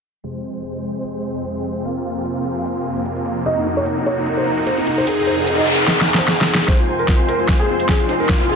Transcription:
0.24 supersaw synth F2 C3 G#3 C4 C5, ambient pad C4, closed hi-hat
0.33 ambient pad G#4
0.64 closed hi-hat
0.84 closed hi-hat
0.97 ambient pad F5 G#5
1.04 closed hi-hat
1.35 closed hi-hat
1.45 closed hi-hat
1.55 closed hi-hat
1.65 closed hi-hat
1.85 supersaw synth A#3 F4, closed hi-hat
2.21 ambient pad A#4, closed hi-hat
2.45 closed hi-hat
2.58 ambient pad A#5
2.65 closed hi-hat
2.96 closed hi-hat
3.06 closed hi-hat
3.16 closed hi-hat
3.26 closed hi-hat
3.46 supersaw synth D#4 F#4, felt piano D#5, closed hi-hat
3.57 felt piano D#4, ambient pad D#4
3.66 felt piano D#4
3.77 felt piano C#5
3.86 felt piano D#4, closed hi-hat
3.97 felt piano D#4
4.06 felt piano C#5, closed hi-hat
4.17 felt piano D#4, ambient pad F#5
4.26 felt piano D#4, closed hi-hat
4.37 felt piano C5
4.47 felt piano D#4
4.57 felt piano D#4, closed hi-hat
4.67 felt piano C5, closed hi-hat
4.78 felt piano D#4, closed hi-hat
4.87 felt piano D#4, closed hi-hat
4.98 felt piano C5
5.07 supersaw synth C4 G#4, felt piano G#4, closed hi-hat, noise sweep
5.18 felt piano G#4
5.27 felt piano C5
5.38 felt piano G#4
5.47 felt piano G#4, closed hi-hat
5.57 felt piano D#5, ambient pad C6
5.67 felt piano G#4, closed hi-hat
5.75 ambient pad C5
5.80 ambient pad G#5
5.88 felt piano G#4, snare, closed hi-hat
6.01 snare
6.08 felt piano G#4
6.14 snare
6.18 felt piano C5, closed hi-hat
6.28 felt piano G#4, snare, closed hi-hat
6.39 felt piano G#4, snare, closed hi-hat
6.48 felt piano G#4, closed hi-hat
6.55 snare
6.59 felt piano G#4
6.68 supersaw synth F2 C3 G#3 C4 C5, ambient pad F4, felt piano C5, kick, snare, closed hi-hat, riser
6.79 felt piano F4
6.88 felt piano F4
6.99 felt piano A#4
7.08 felt piano F4, kick, snare, closed hi-hat
7.19 felt piano F4
7.28 felt piano A#4, closed hi-hat
7.39 felt piano F4
7.49 felt piano F4, kick, snare, closed hi-hat
7.60 felt piano G#4
7.69 felt piano F4
7.80 felt piano F4, closed hi-hat
7.89 felt piano G#4, kick, snare, closed hi-hat
8.00 felt piano F4, closed hi-hat
8.09 felt piano F4, closed hi-hat
8.20 felt piano A#4
8.29 supersaw synth A#3 C4 F4, felt piano F4, kick, snare, closed hi-hat
8.40 felt piano F4
8.49 felt piano G#4

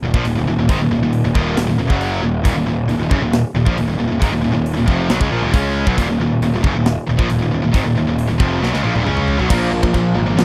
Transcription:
0.02 picked electric bass D#1, distorted electric guitar D#2 A#2
0.14 picked electric bass A#1, distorted electric guitar A#2 F3, kick
0.25 picked electric bass D#1, distorted electric guitar D#2 A#2, open hi-hat
0.35 picked electric bass D#1, distorted electric guitar D#2 A#2
0.47 picked electric bass D#1, distorted electric guitar D#2 A#2
0.57 picked electric bass D#1, distorted electric guitar D#2 A#2
0.69 picked electric bass G#1, distorted electric guitar G#2 D#3, kick, open hi-hat
0.80 picked electric bass D#1, distorted electric guitar D#2 A#2
0.90 picked electric bass D#1, distorted electric guitar D#2 A#2
1.01 picked electric bass D#1, distorted electric guitar D#2 A#2
1.13 open hi-hat
1.25 picked electric bass D#1, distorted electric guitar D#2 A#2
1.34 picked electric bass D#1, distorted electric guitar D#2 A#2 D#3, kick
1.57 picked electric bass D#1, distorted electric guitar D#2 A#2, snare, open hi-hat
1.69 picked electric bass D#1, distorted electric guitar D#2 A#2
1.79 picked electric bass D#1, distorted electric guitar D#2 A#2
1.90 picked electric bass F#1, distorted electric guitar F#2 C#3 F#3, kick
2.01 open hi-hat
2.23 picked electric bass D#1, distorted electric guitar D#2 A#2
2.45 picked electric bass D#1, distorted electric guitar D#2 A#2, kick, open hi-hat
2.55 picked electric bass D#1, distorted electric guitar D#2 A#2
2.67 picked electric bass D#1, distorted electric guitar D#2 A#2
2.88 picked electric bass D#1, distorted electric guitar D#2 A#2, open hi-hat
2.98 picked electric bass D#1
3.03 distorted electric guitar D#2 A#2
3.11 picked electric bass F#1, distorted electric guitar F#2 C#3, kick
3.20 picked electric bass D#1, distorted electric guitar D#2 A#2
3.33 snare, open hi-hat
3.54 picked electric bass D#1, distorted electric guitar D#2 A#2
3.66 picked electric bass A#1, distorted electric guitar A#2 F3, kick
3.77 picked electric bass D#1, distorted electric guitar D#2 A#2, open hi-hat
3.88 picked electric bass D#1, distorted electric guitar D#2 A#2
3.98 picked electric bass D#1, distorted electric guitar D#2 A#2
4.08 picked electric bass D#1, distorted electric guitar A#2
4.12 distorted electric guitar D#2 A#2
4.21 picked electric bass G#1, distorted electric guitar G#2 D#3, kick, open hi-hat
4.30 picked electric bass D#1, distorted electric guitar D#2
4.34 distorted electric guitar D#2 A#2
4.44 picked electric bass D#1, distorted electric guitar D#2 A#2
4.54 picked electric bass D#1, distorted electric guitar D#2 A#2
4.66 open hi-hat
4.77 picked electric bass D#1, distorted electric guitar D#2 A#2
4.88 picked electric bass F1, distorted electric guitar F2 C3 F3, kick
5.10 picked electric bass B1, distorted electric guitar B2 F#3, snare, open hi-hat
5.20 picked electric bass C#2, distorted electric guitar C#3 G#3, kick
5.31 picked electric bass A#1, distorted electric guitar A#2 F3
5.42 picked electric bass D#1, distorted electric guitar D#2 A#2
5.54 picked electric bass C#2, distorted electric guitar C#3 G#3 C#4, kick, open hi-hat
5.86 picked electric bass B1, distorted electric guitar B2 F#3, kick
5.97 picked electric bass D#1, distorted electric guitar D#2 A#2, kick, open hi-hat
6.08 picked electric bass D#1, distorted electric guitar D#2 A#2
6.20 picked electric bass D#1, distorted electric guitar D#2 A#2
6.41 picked electric bass D#1, distorted electric guitar D#2 A#2, open hi-hat
6.54 picked electric bass D#1, distorted electric guitar D#2 A#2
6.63 picked electric bass F#1, distorted electric guitar F#2 C#3, kick
6.68 distorted electric guitar C#3
6.74 picked electric bass D#1, distorted electric guitar D#2 A#2
6.86 snare, open hi-hat
7.07 picked electric bass D#1, distorted electric guitar D#2 A#2
7.17 picked electric bass A#1, distorted electric guitar A#2 F3, kick
7.28 picked electric bass D#1, distorted electric guitar D#2 A#2, open hi-hat
7.39 picked electric bass D#1, distorted electric guitar D#2 A#2
7.51 picked electric bass D#1, distorted electric guitar D#2 A#2
7.62 picked electric bass D#1, distorted electric guitar D#2 A#2
7.72 picked electric bass G#1, distorted electric guitar G#2 D#3, kick, open hi-hat
7.84 picked electric bass D#1, distorted electric guitar D#2 A#2
7.95 picked electric bass D#1, distorted electric guitar D#2 A#2
8.07 picked electric bass D#1, distorted electric guitar D#2 A#2
8.19 open hi-hat
8.27 picked electric bass D#1, distorted electric guitar D#2 A#2
8.38 picked electric bass F1, distorted electric guitar F2 C3 F3, kick
8.61 picked electric bass B1, distorted electric guitar B2 F#3, snare
8.72 picked electric bass C#2, distorted electric guitar C#3 G#3, snare
8.83 picked electric bass A#1, distorted electric guitar A#2 F3, high tom
8.95 picked electric bass D#1, distorted electric guitar D#2 A#2, high tom
9.05 picked electric bass C#2, distorted electric guitar C#3 G#3 C#4, mid tom
9.17 mid tom
9.28 floor tom
9.38 picked electric bass B1, distorted electric guitar B2 F#3, floor tom
9.50 picked electric bass A#1, distorted electric guitar A#2 F3 A#3, kick, crash
9.72 picked electric bass A#1, distorted electric guitar A#2 F3 A#3
9.82 distorted electric guitar A#2 F3, kick
9.94 picked electric bass A#1, distorted electric guitar A#2 F3 A#3, kick, crash
10.14 picked electric bass G#1, distorted electric guitar A#2 F3 A#3
10.26 distorted electric guitar A#2 F3
10.37 picked electric bass A#1, distorted electric guitar A#2 F3 A#3, snare, crash

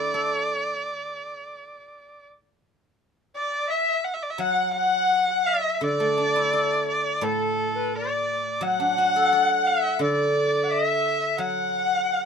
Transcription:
Already playing: guzheng D3 A3 D4 E4, erhu D5
0.14 guzheng A4
3.34 dizi D5, erhu D5
3.67 dizi E5, erhu E5
4.04 erhu F#5
4.14 erhu E5
4.22 erhu D5
4.30 erhu E5
4.38 guzheng F#3, dizi F#5, erhu F#5
4.74 erhu F#5, dizi F#5
5.29 dizi F#5
5.46 dizi E5, erhu E5
5.53 dizi D5
5.61 dizi E5
5.74 erhu E5
5.81 guzheng D3, dizi D5, erhu D5
6.00 guzheng A3
6.18 guzheng D4
6.36 guzheng E4
6.53 guzheng A4
6.88 erhu D5
7.21 guzheng A2, erhu A4, dizi A4
7.75 dizi B4
7.95 dizi D5, erhu D5
8.61 guzheng F#3, dizi F#5, erhu F#5
8.80 guzheng D4
8.98 guzheng F#4
9.16 guzheng A4
9.33 guzheng D5
9.67 erhu E5
9.99 guzheng D3, dizi D5, erhu D5
10.63 dizi F#5
10.68 dizi E5, erhu E5
11.37 guzheng F#3, dizi F#5, erhu F#5

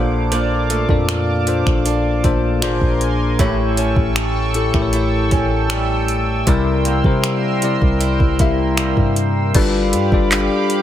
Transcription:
Already playing: 808-style bass A#1, steel-string acoustic guitar A#2 F3 D4, tine electric piano A#2 A#3 D4 A4 C5, analog synth pad F5 A5 D6
0.32 steel-string acoustic guitar A#2 D4, closed hi-hat
0.70 steel-string acoustic guitar A3, closed hi-hat
0.89 808-style bass F2, tine electric piano A#2 A#3 D4 A4 D5, kick
1.09 finger snap, closed hi-hat
1.47 tine electric piano A#2 A#3 D4 A4 C5, closed hi-hat
1.67 808-style bass A#1, finger snap, kick
1.85 steel-string acoustic guitar D4, closed hi-hat
2.24 808-style bass A#1, tine electric piano A#2 A#3 D4 A4 C5, steel-string acoustic guitar A3, kick, closed hi-hat
2.62 808-style bass G#1, tine electric piano A#2 A#3 D4 G#4 C5, steel-string acoustic guitar A#2, analog synth pad A#4 G#5 C6, finger snap, closed hi-hat
2.81 808-style bass A#1, kick
3.01 closed hi-hat
3.39 808-style bass A1, tine electric piano A2 A3 E4 G4 C#5, steel-string acoustic guitar A2 E4, analog synth pad A4 G5 C#6 E6, kick, closed hi-hat
3.77 steel-string acoustic guitar C#4, closed hi-hat
3.96 808-style bass A1, kick
4.16 finger snap, closed hi-hat
4.54 tine electric piano A2 A3 E4 G4 A4, closed hi-hat
4.74 808-style bass A1, tine electric piano A2 A3 E4 G4 A#4, finger snap, kick
4.82 tine electric piano C#5
4.93 steel-string acoustic guitar E4, closed hi-hat
5.31 808-style bass A1, steel-string acoustic guitar C#4, kick, closed hi-hat
5.70 steel-string acoustic guitar G3, finger snap, closed hi-hat
6.08 closed hi-hat
6.47 808-style bass C2, tine electric piano C3 G3 E4 A#4 D5, steel-string acoustic guitar C3 E4, analog synth pad A#4 C6, kick, closed hi-hat
6.85 steel-string acoustic guitar A#3, closed hi-hat
7.04 808-style bass C3, tine electric piano C3 G3 E4 A#4 C5, kick
7.24 finger snap, closed hi-hat
7.62 tine electric piano C3 G3 E4 A#4 D5, closed hi-hat
7.82 808-style bass C2, kick
8.01 steel-string acoustic guitar E4, closed hi-hat
8.20 808-style bass C2, kick
8.39 tine electric piano C3 G3 E4 A#4 E5, steel-string acoustic guitar A#3, kick, closed hi-hat
8.77 steel-string acoustic guitar G3, finger snap, closed hi-hat
8.97 808-style bass G2, kick
9.16 closed hi-hat
9.55 808-style bass G1, tine electric piano G3 D4 F4 A4 B4, analog synth pad G4 F5 B5 D6, kick, closed hi-hat, crash
9.93 808-style bass G2, closed hi-hat
10.12 808-style bass G1, tine electric piano G3 D4 F4 A4 D5, kick
10.32 clap, closed hi-hat
10.70 closed hi-hat

